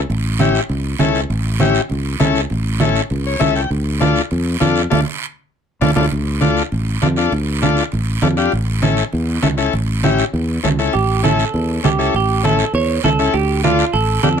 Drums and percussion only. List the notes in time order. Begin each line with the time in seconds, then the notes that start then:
0.10 high conga, long guiro
0.39 high conga, short guiro
0.55 short guiro
0.69 high conga, long guiro
0.99 high conga, short guiro
1.15 short guiro
1.30 high conga, long guiro
1.60 high conga, short guiro
1.75 short guiro
1.89 high conga, long guiro
2.20 high conga, short guiro
2.35 short guiro
2.50 high conga, long guiro
2.80 high conga, short guiro
2.96 short guiro
3.10 high conga, long guiro
3.41 high conga, short guiro
3.56 short guiro
3.71 high conga, long guiro
4.01 high conga, short guiro
4.16 short guiro
4.31 high conga, long guiro
4.61 high conga, short guiro
4.76 short guiro
4.92 high conga, long guiro
5.81 high conga, long guiro
5.96 high conga, long guiro
6.12 high conga, long guiro
6.41 high conga, short guiro
6.57 short guiro
6.72 high conga, long guiro
7.02 high conga, short guiro
7.16 short guiro
7.32 high conga, long guiro
7.62 high conga, short guiro
7.77 short guiro
7.92 high conga, long guiro
8.22 high conga, short guiro
8.37 short guiro
8.52 high conga, long guiro
8.82 high conga, short guiro
8.97 short guiro
9.12 high conga, long guiro
9.43 high conga, short guiro
9.58 short guiro
9.73 high conga, long guiro
10.04 high conga, short guiro
10.19 short guiro
10.34 high conga, long guiro
10.64 high conga, short guiro
10.79 short guiro
10.93 high conga, long guiro
11.24 high conga, short guiro
11.39 short guiro
11.54 high conga, long guiro
11.84 high conga, short guiro
12.00 short guiro
12.14 high conga, long guiro
12.44 high conga, short guiro
12.59 short guiro
12.74 high conga, long guiro
13.03 high conga, short guiro
13.19 short guiro
13.34 high conga, long guiro
13.63 high conga, short guiro
13.79 short guiro
13.93 high conga, long guiro
14.23 high conga, short guiro